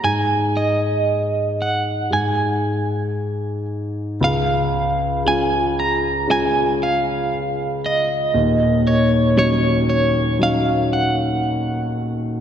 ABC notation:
X:1
M:4/4
L:1/8
Q:1/4=58
K:Db
V:1 name="Clean electric guitar"
a e2 g a3 z | f2 a b a f2 e- | e d d d f g2 z |]
V:2 name="Grand piano" clef=bass
A,,4 A,,4 | D,,2 [A,DF]2 [A,DF]2 z2 | [E,,,E,,]2 [G,DE]2 [G,DE]2 z2 |]